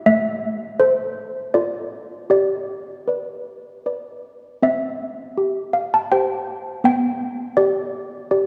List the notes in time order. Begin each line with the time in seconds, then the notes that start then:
0.06 A3 E5
0.80 A4 C5
1.54 F4 A4 D5
2.30 G4 D5
3.08 B4 D5
3.86 B4 D5
4.62 C4 E5
5.38 G4
5.73 F5
5.94 A5
6.12 G4 C5 G5
6.84 B3 G5
7.57 G4 D5
8.31 G4 D5